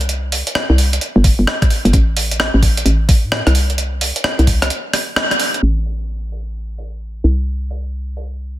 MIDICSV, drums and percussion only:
0, 0, Header, 1, 2, 480
1, 0, Start_track
1, 0, Tempo, 461538
1, 93, Time_signature, 4, 2, 24, 8
1, 8938, End_track
2, 0, Start_track
2, 0, Title_t, "Drums"
2, 8, Note_on_c, 9, 42, 38
2, 94, Note_off_c, 9, 42, 0
2, 94, Note_on_c, 9, 42, 70
2, 198, Note_off_c, 9, 42, 0
2, 335, Note_on_c, 9, 46, 104
2, 439, Note_off_c, 9, 46, 0
2, 488, Note_on_c, 9, 42, 68
2, 574, Note_on_c, 9, 37, 113
2, 592, Note_off_c, 9, 42, 0
2, 678, Note_off_c, 9, 37, 0
2, 814, Note_on_c, 9, 46, 88
2, 918, Note_off_c, 9, 46, 0
2, 969, Note_on_c, 9, 42, 70
2, 1054, Note_off_c, 9, 42, 0
2, 1054, Note_on_c, 9, 42, 67
2, 1158, Note_off_c, 9, 42, 0
2, 1291, Note_on_c, 9, 36, 103
2, 1292, Note_on_c, 9, 46, 104
2, 1395, Note_off_c, 9, 36, 0
2, 1396, Note_off_c, 9, 46, 0
2, 1533, Note_on_c, 9, 37, 110
2, 1637, Note_off_c, 9, 37, 0
2, 1685, Note_on_c, 9, 36, 101
2, 1687, Note_on_c, 9, 37, 51
2, 1687, Note_on_c, 9, 42, 52
2, 1773, Note_on_c, 9, 46, 92
2, 1789, Note_off_c, 9, 36, 0
2, 1791, Note_off_c, 9, 37, 0
2, 1791, Note_off_c, 9, 42, 0
2, 1877, Note_off_c, 9, 46, 0
2, 1927, Note_on_c, 9, 42, 37
2, 2011, Note_on_c, 9, 36, 110
2, 2013, Note_off_c, 9, 42, 0
2, 2013, Note_on_c, 9, 42, 69
2, 2115, Note_off_c, 9, 36, 0
2, 2117, Note_off_c, 9, 42, 0
2, 2252, Note_on_c, 9, 46, 107
2, 2356, Note_off_c, 9, 46, 0
2, 2407, Note_on_c, 9, 42, 69
2, 2493, Note_on_c, 9, 37, 113
2, 2511, Note_off_c, 9, 42, 0
2, 2597, Note_off_c, 9, 37, 0
2, 2730, Note_on_c, 9, 36, 58
2, 2732, Note_on_c, 9, 46, 92
2, 2834, Note_off_c, 9, 36, 0
2, 2836, Note_off_c, 9, 46, 0
2, 2885, Note_on_c, 9, 42, 71
2, 2971, Note_off_c, 9, 42, 0
2, 2971, Note_on_c, 9, 42, 68
2, 3075, Note_off_c, 9, 42, 0
2, 3210, Note_on_c, 9, 36, 102
2, 3212, Note_on_c, 9, 46, 111
2, 3314, Note_off_c, 9, 36, 0
2, 3316, Note_off_c, 9, 46, 0
2, 3451, Note_on_c, 9, 37, 112
2, 3555, Note_off_c, 9, 37, 0
2, 3606, Note_on_c, 9, 37, 52
2, 3606, Note_on_c, 9, 42, 52
2, 3691, Note_on_c, 9, 46, 94
2, 3710, Note_off_c, 9, 37, 0
2, 3710, Note_off_c, 9, 42, 0
2, 3795, Note_off_c, 9, 46, 0
2, 3846, Note_on_c, 9, 42, 38
2, 3932, Note_off_c, 9, 42, 0
2, 3932, Note_on_c, 9, 42, 70
2, 4036, Note_off_c, 9, 42, 0
2, 4172, Note_on_c, 9, 46, 108
2, 4276, Note_off_c, 9, 46, 0
2, 4326, Note_on_c, 9, 42, 67
2, 4411, Note_on_c, 9, 37, 115
2, 4430, Note_off_c, 9, 42, 0
2, 4515, Note_off_c, 9, 37, 0
2, 4566, Note_on_c, 9, 42, 39
2, 4651, Note_on_c, 9, 36, 59
2, 4652, Note_on_c, 9, 46, 95
2, 4670, Note_off_c, 9, 42, 0
2, 4755, Note_off_c, 9, 36, 0
2, 4756, Note_off_c, 9, 46, 0
2, 4807, Note_on_c, 9, 37, 58
2, 4807, Note_on_c, 9, 42, 69
2, 4891, Note_off_c, 9, 42, 0
2, 4891, Note_on_c, 9, 42, 66
2, 4911, Note_off_c, 9, 37, 0
2, 4995, Note_off_c, 9, 42, 0
2, 5132, Note_on_c, 9, 37, 54
2, 5132, Note_on_c, 9, 46, 112
2, 5236, Note_off_c, 9, 37, 0
2, 5236, Note_off_c, 9, 46, 0
2, 5371, Note_on_c, 9, 37, 110
2, 5475, Note_off_c, 9, 37, 0
2, 5526, Note_on_c, 9, 37, 54
2, 5526, Note_on_c, 9, 42, 52
2, 5611, Note_on_c, 9, 46, 97
2, 5630, Note_off_c, 9, 37, 0
2, 5630, Note_off_c, 9, 42, 0
2, 5715, Note_off_c, 9, 46, 0
2, 5765, Note_on_c, 9, 42, 38
2, 5851, Note_on_c, 9, 49, 75
2, 5869, Note_off_c, 9, 42, 0
2, 5955, Note_off_c, 9, 49, 0
2, 6091, Note_on_c, 9, 46, 102
2, 6195, Note_off_c, 9, 46, 0
2, 6572, Note_on_c, 9, 46, 85
2, 6676, Note_off_c, 9, 46, 0
2, 7052, Note_on_c, 9, 46, 100
2, 7156, Note_off_c, 9, 46, 0
2, 7532, Note_on_c, 9, 46, 89
2, 7636, Note_off_c, 9, 46, 0
2, 8011, Note_on_c, 9, 46, 94
2, 8115, Note_off_c, 9, 46, 0
2, 8492, Note_on_c, 9, 46, 85
2, 8596, Note_off_c, 9, 46, 0
2, 8938, End_track
0, 0, End_of_file